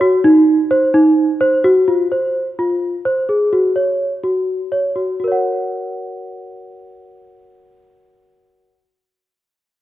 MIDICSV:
0, 0, Header, 1, 2, 480
1, 0, Start_track
1, 0, Tempo, 470588
1, 241, Time_signature, 7, 3, 24, 8
1, 4322, Tempo, 485437
1, 9838, End_track
2, 0, Start_track
2, 0, Title_t, "Celesta"
2, 0, Program_c, 0, 8
2, 10, Note_on_c, 0, 66, 82
2, 184, Note_off_c, 0, 66, 0
2, 248, Note_on_c, 0, 63, 96
2, 599, Note_off_c, 0, 63, 0
2, 722, Note_on_c, 0, 72, 82
2, 898, Note_off_c, 0, 72, 0
2, 960, Note_on_c, 0, 63, 85
2, 1313, Note_off_c, 0, 63, 0
2, 1435, Note_on_c, 0, 72, 81
2, 1612, Note_off_c, 0, 72, 0
2, 1677, Note_on_c, 0, 66, 86
2, 1853, Note_off_c, 0, 66, 0
2, 1917, Note_on_c, 0, 65, 61
2, 2092, Note_off_c, 0, 65, 0
2, 2160, Note_on_c, 0, 72, 60
2, 2512, Note_off_c, 0, 72, 0
2, 2642, Note_on_c, 0, 65, 62
2, 2995, Note_off_c, 0, 65, 0
2, 3116, Note_on_c, 0, 72, 62
2, 3293, Note_off_c, 0, 72, 0
2, 3357, Note_on_c, 0, 68, 57
2, 3534, Note_off_c, 0, 68, 0
2, 3598, Note_on_c, 0, 66, 66
2, 3776, Note_off_c, 0, 66, 0
2, 3832, Note_on_c, 0, 73, 54
2, 4195, Note_off_c, 0, 73, 0
2, 4318, Note_on_c, 0, 66, 58
2, 4672, Note_off_c, 0, 66, 0
2, 4797, Note_on_c, 0, 73, 51
2, 4974, Note_off_c, 0, 73, 0
2, 5034, Note_on_c, 0, 66, 43
2, 5212, Note_off_c, 0, 66, 0
2, 5273, Note_on_c, 0, 66, 41
2, 5315, Note_on_c, 0, 70, 39
2, 5351, Note_on_c, 0, 73, 39
2, 5391, Note_on_c, 0, 78, 40
2, 8692, Note_off_c, 0, 66, 0
2, 8733, Note_off_c, 0, 70, 0
2, 8769, Note_off_c, 0, 73, 0
2, 8809, Note_off_c, 0, 78, 0
2, 9838, End_track
0, 0, End_of_file